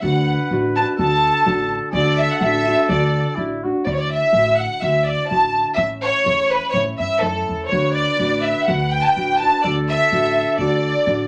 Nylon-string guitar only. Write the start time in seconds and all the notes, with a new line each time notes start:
0.03 D3 A3 D4 F#4
0.51 D3 A3 D4 F#4
0.79 A3 D4 F#4
0.99 D3 A3 D4 F#4
1.45 D3 A3 D4 F#4
1.94 D3 A3 D4 F#4
2.43 D3 A3 D4 F#4
2.67 A3 D4 F#4
2.90 D3 A3 D4 F#4
3.37 D3 A3 D4 F#4
3.64 A3 D4 F#4
3.86 D3 A3 E4 F#4
4.35 D3 A3 E4 F#4
4.82 D3 A3 E4 F#4
5.31 D3 A3 E4 F#4
5.78 A2 E3 A3 C#4 E4
6.25 E3 A3 C#4 E4
6.74 A2 E3 A3 C#4 E4
7.22 E3 A3 C#4 E4
7.71 D3 A3 D4 F#4
8.17 D3 A3 D4 F#4
8.67 D3 A3 D4 F#4
9.16 D3 A3 D4 F#4
9.42 A3 D4 F#4
9.65 D3 A3 D4 F#4
10.12 D3 A3 D4 F#4
10.60 D3 A3 D4 F#4
11.06 D3 A3 D4 F#4